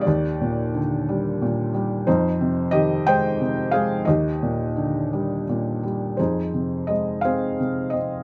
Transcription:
<<
  \new Staff \with { instrumentName = "Felt piano" } { \time 6/8 \key f \dorian \tempo 4. = 59 << { d''4 r2 | c''4 ees''8 g''4 f''8 | ees''2 r4 | c''4 ees''8 f''4 ees''8 | } \\ { g'4 r2 | ees'4 g'8 c''4 aes'8 | g'2 r4 | <ees' aes'>4. <aes' c''>4. | } >> }
  \new Staff \with { instrumentName = "Felt piano" } { \clef bass \time 6/8 \key f \dorian ees,8 bes,8 d8 g8 bes,8 g8 | f,8 c8 ees8 aes8 c8 aes8 | ees,8 bes,8 d8 g8 bes,8 g8 | f,8 c8 aes8 c'8 c8 c'8 | }
>>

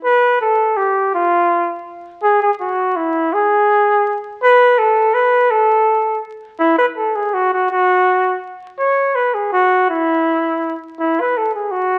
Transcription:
\new Staff \with { instrumentName = "Flugelhorn" } { \time 3/4 \key a \major \tempo 4 = 165 b'4 a'4 g'4 | f'2 r4 | gis'8 gis'8 fis'4 e'4 | gis'2~ gis'8 r8 |
b'4 a'4 b'4 | a'2 r4 | e'8 b'8 a'8 gis'8 fis'8 fis'8 | fis'2 r4 |
cis''4 b'8 gis'8 fis'4 | e'2~ e'8 r8 | e'8 b'8 a'8 gis'8 fis'4 | }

